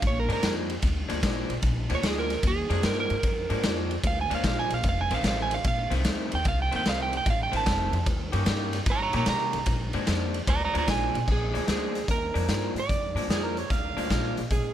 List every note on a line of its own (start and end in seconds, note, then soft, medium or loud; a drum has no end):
0.02 0.25 A#1 medium
0.02 kick loud
0.02 ride medium
0.07 0.18 C#5 medium
0.20 0.31 A#4 medium
0.28 0.40 G#2 medium
0.28 0.40 A#2 medium
0.28 0.41 F3 medium
0.28 0.41 G#3 loud
0.28 0.42 D4 loud
0.28 ride medium
0.33 0.53 A#4 medium
0.42 0.76 F2 medium
0.42 0.73 A#2 medium
0.42 0.73 F3 medium
0.42 0.73 G#3 medium
0.42 0.73 D4 medium
0.42 snare loud
0.42 ride medium
0.70 ride medium
0.82 1.05 D2 loud
0.82 kick loud
0.82 ride medium
1.08 1.21 D2 medium
1.08 1.21 A#2 medium
1.08 1.22 F3 medium
1.08 1.22 G#3 medium
1.08 1.22 D4 medium
1.08 ride medium
1.22 1.45 A#1 medium
1.22 1.53 A#2 medium
1.22 1.54 F3 medium
1.22 1.54 G#3 medium
1.22 1.54 D4 medium
1.22 kick medium
1.22 snare loud
1.22 ride medium
1.49 1.61 A#1 medium
1.49 ride medium
1.62 1.85 A#1 loud
1.62 kick loud
1.62 ride medium
1.90 2.01 D2 loud
1.90 2.02 A#2 medium
1.90 2.02 F3 medium
1.90 2.02 G#3 loud
1.90 2.03 D4 loud
1.90 ride medium
1.95 2.05 C#5 medium
2.03 2.37 D2 medium
2.03 2.34 A#2 medium
2.03 2.34 F3 medium
2.03 2.34 G#3 medium
2.03 2.34 D4 medium
2.03 2.18 G#4 medium
2.03 snare loud
2.03 ride medium
2.19 2.44 A#4 medium
2.30 snare soft
2.30 ride medium
2.43 2.66 D#2 loud
2.43 kick loud
2.43 ride medium
2.47 2.84 G#4 loud
2.70 2.81 F2 loud
2.70 2.82 A#2 medium
2.70 2.83 F3 medium
2.70 2.83 G#3 loud
2.70 2.83 D4 loud
2.70 ride medium
2.83 3.06 G2 medium
2.83 3.14 A#2 medium
2.83 3.15 F3 medium
2.83 3.15 G#3 medium
2.83 3.15 D4 medium
2.83 2.98 A#4 medium
2.83 snare loud
2.83 ride medium
3.00 3.76 A#4 loud
3.10 3.22 G#2 medium
3.10 ride medium
3.23 3.46 F2 loud
3.23 kick loud
3.23 ride medium
3.50 3.61 G#2 loud
3.50 3.62 A#2 medium
3.50 3.62 F3 medium
3.50 3.63 G#3 medium
3.50 3.63 D4 medium
3.50 ride medium
3.63 3.97 F2 medium
3.63 3.94 A#2 medium
3.63 3.95 F3 medium
3.63 3.95 G#3 medium
3.63 3.95 D4 medium
3.63 snare loud
3.63 ride medium
3.91 ride medium
4.04 4.26 D2 loud
4.04 4.19 F5 loud
4.04 kick loud
4.04 ride medium
4.21 4.32 G#5 loud
4.30 4.42 D2 medium
4.30 4.43 A#2 medium
4.30 4.43 F3 medium
4.30 4.44 G#3 medium
4.30 4.44 D4 loud
4.30 ride medium
4.35 4.46 F5 medium
4.44 4.67 A#1 medium
4.44 4.75 A#2 medium
4.44 4.75 F3 medium
4.44 4.75 G#3 medium
4.44 4.76 D4 medium
4.44 4.59 F5 medium
4.44 kick medium
4.44 snare loud
4.44 ride medium
4.59 4.71 G#5 medium
4.70 4.82 A#1 medium
4.70 4.86 F5 medium
4.70 ride medium
4.83 5.07 F1 loud
4.83 kick loud
4.83 ride medium
4.89 5.00 F5 loud
5.01 5.12 G#5 medium
5.10 5.22 A1 medium
5.10 5.23 F2 medium
5.10 5.23 D#3 medium
5.10 5.24 A3 loud
5.10 5.25 C4 loud
5.10 ride medium
5.14 5.26 F5 medium
5.23 5.57 A1 medium
5.23 5.55 F2 medium
5.23 5.55 D#3 medium
5.23 5.56 A3 medium
5.23 5.56 C4 medium
5.23 snare loud
5.23 ride medium
5.28 5.39 F5 loud
5.42 5.53 G#5 medium
5.51 5.66 F5 medium
5.51 ride medium
5.64 5.87 A#1 loud
5.64 5.92 F5 loud
5.64 kick loud
5.64 ride medium
5.90 6.02 C2 loud
5.90 6.04 F2 medium
5.90 6.04 D#3 medium
5.90 6.04 A3 loud
5.90 6.04 C4 medium
5.90 ride medium
6.04 6.27 D2 loud
6.04 6.36 F2 medium
6.04 6.36 D#3 medium
6.04 6.36 A3 medium
6.04 6.36 C4 medium
6.04 snare loud
6.04 ride medium
6.32 6.44 D#2 medium
6.32 6.46 G5 medium
6.32 ride medium
6.45 6.68 C2 loud
6.45 6.60 F5 loud
6.45 kick loud
6.45 ride medium
6.62 6.73 G5 medium
6.72 6.83 D#2 medium
6.72 6.84 F2 medium
6.72 6.84 D#3 loud
6.72 6.84 A3 medium
6.72 6.84 C4 medium
6.72 ride medium
6.76 6.87 G5 medium
6.85 7.19 C2 medium
6.85 7.16 F2 medium
6.85 7.16 D#3 medium
6.85 7.16 A3 medium
6.85 7.16 C4 medium
6.85 snare loud
6.85 ride medium
6.89 7.00 F5 loud
7.02 7.14 G5 medium
7.13 ride medium
7.17 7.28 G5 loud
7.26 7.49 A1 loud
7.26 kick loud
7.26 ride medium
7.30 7.41 F5 loud
7.43 7.54 G5 loud
7.52 7.64 A1 medium
7.52 7.64 F2 medium
7.52 7.65 D#3 medium
7.52 7.65 A3 loud
7.52 7.65 C4 loud
7.52 ride medium
7.57 8.07 A5 loud
7.66 7.88 F1 medium
7.66 7.97 F2 medium
7.66 7.97 D#3 medium
7.66 7.97 A3 medium
7.66 7.97 C4 medium
7.66 kick medium
7.66 snare loud
7.66 ride medium
7.92 8.06 F2 medium
7.92 ride medium
8.06 8.29 D#2 loud
8.06 kick loud
8.06 ride medium
8.32 8.44 G2 loud
8.32 8.45 D#3 medium
8.32 8.46 A#3 medium
8.32 8.46 C#4 loud
8.32 8.46 G4 loud
8.32 ride medium
8.46 8.80 G2 loud
8.46 8.77 D#3 medium
8.46 8.77 A#3 medium
8.46 8.78 C#4 medium
8.46 8.78 G4 medium
8.46 snare loud
8.46 ride medium
8.73 snare soft
8.73 ride medium
8.86 9.09 G#2 medium
8.86 kick loud
8.86 ride medium
8.90 9.01 C#5 medium
8.90 9.02 A#5 loud
9.02 9.14 C#5 medium
9.02 9.15 A#5 loud
9.13 9.25 A#2 loud
9.13 9.25 D#3 medium
9.13 9.25 A#3 medium
9.13 9.26 C#4 loud
9.13 9.26 G4 loud
9.13 9.27 C#5 medium
9.13 9.28 A#5 medium
9.13 ride medium
9.26 9.49 C3 medium
9.26 9.57 D#3 medium
9.26 9.57 A#3 medium
9.26 9.58 C#4 medium
9.26 9.58 G4 medium
9.26 10.06 A#5 medium
9.26 snare loud
9.26 ride loud
9.53 9.65 C2 medium
9.53 ride medium
9.66 9.89 A#1 loud
9.66 kick loud
9.66 ride medium
9.93 10.05 G#2 medium
9.93 10.05 A#2 medium
9.93 10.05 F3 medium
9.93 10.05 G#3 loud
9.93 10.06 D4 loud
9.93 ride medium
10.06 10.41 F2 medium
10.06 10.38 A#2 medium
10.06 10.38 F3 medium
10.06 10.38 G#3 medium
10.06 10.38 D4 medium
10.06 snare loud
10.06 ride medium
10.34 ride medium
10.47 10.70 D2 loud
10.47 10.61 D5 loud
10.47 10.62 A#5 loud
10.47 kick loud
10.47 ride medium
10.64 10.75 D5 medium
10.64 10.76 A#5 medium
10.74 10.86 D2 loud
10.74 10.85 A#2 medium
10.74 10.86 F3 medium
10.74 10.86 G#3 medium
10.74 10.86 D4 loud
10.74 ride medium
10.78 10.89 D5 medium
10.78 10.89 A#5 medium
10.86 11.10 A#1 medium
10.86 11.18 A#2 medium
10.86 11.18 F3 medium
10.86 11.18 G#3 medium
10.86 11.18 D4 medium
10.86 kick medium
10.86 snare loud
10.86 ride medium
10.91 11.28 G#5 loud
11.15 11.26 A#1 loud
11.15 ride medium
11.27 11.50 A#1 medium
11.27 kick medium
11.27 crash medium
11.32 11.67 G#4 medium
11.54 11.66 D2 medium
11.54 11.65 A#2 medium
11.54 11.66 F3 medium
11.54 11.66 G#3 medium
11.54 11.67 D4 medium
11.54 closed hi-hat medium
11.66 12.02 D2 medium
11.66 11.98 A#2 medium
11.66 11.98 F3 medium
11.66 11.99 G#3 medium
11.66 11.99 D4 medium
11.66 snare loud
11.66 closed hi-hat medium
11.71 12.11 G#4 medium
11.95 snare soft
11.95 closed hi-hat medium
12.08 12.31 D#2 medium
12.08 12.73 A#4 medium
12.08 kick loud
12.08 closed hi-hat medium
12.34 12.46 F2 medium
12.34 12.47 A#2 medium
12.34 12.47 F3 medium
12.34 12.48 G#3 medium
12.34 12.48 D4 medium
12.34 closed hi-hat medium
12.48 12.71 G2 medium
12.48 12.79 A#2 medium
12.48 12.80 F3 medium
12.48 12.80 G#3 medium
12.48 12.80 D4 medium
12.48 snare loud
12.48 closed hi-hat medium
12.75 12.86 G#2 medium
12.75 closed hi-hat medium
12.79 13.94 D5 medium
12.89 13.12 F2 medium
12.89 kick medium
12.89 closed hi-hat medium
13.15 13.26 G#2 medium
13.15 13.28 A#2 medium
13.15 13.29 F3 medium
13.15 13.29 G#3 medium
13.15 13.29 D4 medium
13.15 closed hi-hat medium
13.28 13.62 F2 medium
13.28 13.60 A#2 medium
13.28 13.61 F3 medium
13.28 13.61 G#3 medium
13.28 13.61 D4 medium
13.28 13.46 G#4 medium
13.28 snare loud
13.28 closed hi-hat medium
13.45 13.60 A#4 medium
13.57 13.70 C#5 medium
13.57 closed hi-hat medium
13.70 13.92 D2 medium
13.70 14.42 F5 medium
13.70 kick loud
13.70 closed hi-hat medium
13.96 14.08 D2 medium
13.96 14.09 A#2 medium
13.96 14.09 F3 medium
13.96 14.10 G#3 medium
13.96 14.10 D4 loud
13.96 closed hi-hat medium
14.10 14.33 A#1 medium
14.10 14.41 A#2 medium
14.10 14.41 F3 medium
14.10 14.41 G#3 medium
14.10 14.41 D4 medium
14.10 kick medium
14.10 snare medium
14.10 closed hi-hat medium
14.37 14.48 A#1 medium
14.37 closed hi-hat medium
14.50 14.73 A#1 medium
14.50 14.73 G#4 medium
14.50 kick loud
14.50 closed hi-hat medium